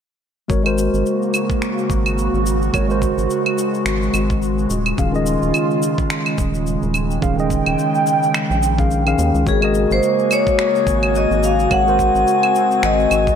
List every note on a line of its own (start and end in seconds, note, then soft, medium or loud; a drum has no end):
0.48 0.89 G#1 loud
0.48 4.66 C#3 medium
0.48 0.61 G#3 medium
0.48 2.72 A#3 medium
0.48 0.61 F#4 medium
0.48 4.66 F#4 medium
0.48 0.62 A#4 medium
0.48 0.62 C#5 medium
0.48 kick loud
0.48 cabasa soft
0.63 2.70 G#3 medium
0.63 2.70 F#4 medium
0.63 2.71 A#4 medium
0.63 2.72 C5 medium
0.63 cabasa soft
0.63 claves medium
0.78 cabasa medium
0.93 1.03 G#1 medium
0.93 cabasa soft
1.06 cabasa soft
1.22 cabasa soft
1.34 cabasa medium
1.34 claves medium
1.50 kick loud
1.50 cabasa soft
1.62 finger snap medium
1.62 cabasa soft
1.78 cabasa soft
1.90 2.29 G#1 medium
1.90 kick loud
1.90 cabasa medium
2.06 cabasa soft
2.06 claves medium
2.18 cabasa soft
2.33 2.70 G#1 medium
2.33 cabasa soft
2.46 cabasa medium
2.62 cabasa soft
2.73 3.13 G#1 loud
2.73 2.85 G#3 medium
2.73 9.43 G#3 medium
2.73 2.86 F#4 medium
2.73 2.86 A#4 medium
2.73 2.86 C#5 medium
2.73 kick loud
2.73 cabasa soft
2.73 claves medium
2.88 4.68 G#3 medium
2.88 4.68 F#4 medium
2.88 4.69 A#4 medium
2.88 4.69 C5 medium
2.88 cabasa soft
3.02 kick medium
3.02 cabasa medium
3.18 3.28 G#1 medium
3.18 cabasa soft
3.30 cabasa soft
3.46 cabasa soft
3.46 claves medium
3.58 cabasa medium
3.74 cabasa soft
3.85 4.09 G#1 medium
3.85 finger snap medium
3.85 cabasa soft
4.02 cabasa soft
4.14 4.66 G#1 loud
4.14 cabasa medium
4.14 claves medium
4.30 kick loud
4.30 cabasa soft
4.42 cabasa soft
4.58 cabasa soft
4.69 4.94 D#1 loud
4.69 13.36 C#3 medium
4.69 6.92 F4 medium
4.69 cabasa medium
4.86 cabasa soft
4.86 claves medium
4.97 5.38 D#1 loud
4.97 5.10 D#3 medium
4.97 5.10 C#4 medium
4.97 5.10 G#4 medium
4.97 5.11 F5 medium
4.97 kick loud
4.97 cabasa soft
5.12 7.18 D#3 medium
5.12 7.19 C#4 medium
5.12 7.20 G#4 medium
5.12 7.20 D#5 medium
5.12 cabasa soft
5.26 cabasa medium
5.42 5.52 D#1 medium
5.42 cabasa soft
5.54 cabasa soft
5.54 claves medium
5.71 cabasa soft
5.83 cabasa medium
5.98 kick loud
5.98 cabasa soft
6.10 finger snap medium
6.10 cabasa soft
6.26 cabasa soft
6.26 claves medium
6.38 6.78 D#1 medium
6.38 kick loud
6.38 cabasa medium
6.54 cabasa soft
6.67 cabasa soft
6.82 7.19 D#1 medium
6.82 cabasa soft
6.94 9.44 G5 medium
6.94 cabasa medium
6.94 claves medium
7.11 cabasa soft
7.21 7.62 D#1 medium
7.21 7.34 D#3 medium
7.21 7.34 C#4 medium
7.21 7.35 G#4 medium
7.21 7.35 F5 medium
7.21 kick loud
7.21 cabasa soft
7.36 8.74 D#3 medium
7.36 8.75 C#4 medium
7.36 8.76 G#4 medium
7.36 8.76 D#5 medium
7.36 cabasa soft
7.50 kick medium
7.50 cabasa medium
7.66 7.76 D#1 medium
7.66 cabasa soft
7.66 claves medium
7.79 cabasa soft
7.95 cabasa soft
8.07 cabasa medium
8.23 cabasa soft
8.34 finger snap medium
8.34 cabasa soft
8.34 claves medium
8.50 9.15 A#1 medium
8.50 cabasa soft
8.63 cabasa medium
8.78 9.02 D#3 medium
8.78 9.03 C#4 medium
8.78 9.03 G#4 medium
8.78 9.03 F5 medium
8.78 kick loud
8.78 cabasa soft
8.91 cabasa soft
9.06 9.43 D#3 medium
9.06 9.44 C#4 medium
9.06 9.44 G#4 medium
9.06 9.44 F5 medium
9.06 cabasa soft
9.06 claves medium
9.18 9.32 D#2 loud
9.18 cabasa medium
9.34 9.44 C#2 medium
9.34 cabasa soft
9.46 9.86 G#1 loud
9.46 9.58 G#3 medium
9.46 11.69 A#3 medium
9.46 9.59 F#4 medium
9.46 13.36 F#4 medium
9.46 13.36 G#4 medium
9.46 9.89 G#4 medium
9.46 9.59 A#4 medium
9.46 9.59 C#5 medium
9.46 13.36 G#5 medium
9.46 kick loud
9.46 cabasa soft
9.61 11.67 G#3 medium
9.61 11.68 F#4 medium
9.61 11.68 A#4 medium
9.61 11.69 D#5 medium
9.61 cabasa soft
9.61 claves medium
9.75 cabasa medium
9.91 10.01 G#1 medium
9.91 10.33 C5 medium
9.91 cabasa soft
10.03 cabasa soft
10.19 cabasa soft
10.31 11.18 C#5 loud
10.31 cabasa medium
10.31 claves medium
10.47 kick loud
10.47 cabasa soft
10.59 finger snap medium
10.59 cabasa soft
10.75 cabasa soft
10.87 11.26 G#1 medium
10.87 kick loud
10.87 cabasa medium
11.03 cabasa soft
11.03 claves medium
11.15 11.45 D#5 medium
11.15 cabasa soft
11.31 11.67 G#1 medium
11.31 cabasa soft
11.43 11.73 F5 loud
11.43 cabasa medium
11.59 cabasa soft
11.70 12.10 G#1 loud
11.70 11.83 G#3 medium
11.70 13.36 C4 medium
11.70 11.83 F#4 medium
11.70 11.83 A#4 medium
11.70 11.84 C#5 medium
11.70 12.87 F#5 loud
11.70 kick loud
11.70 cabasa soft
11.70 claves medium
11.85 13.36 G#3 medium
11.85 13.36 F#4 medium
11.85 13.36 A#4 medium
11.85 13.36 C5 loud
11.85 cabasa soft
11.99 kick medium
11.99 cabasa medium
12.15 12.25 G#1 medium
12.15 cabasa soft
12.27 cabasa soft
12.43 cabasa soft
12.43 claves medium
12.55 cabasa medium
12.71 cabasa soft
12.83 13.07 G#1 medium
12.83 13.36 D#5 medium
12.83 finger snap medium
12.83 cabasa soft
13.00 cabasa soft
13.11 13.36 G#1 medium
13.11 cabasa medium
13.11 claves medium
13.27 kick loud
13.27 cabasa soft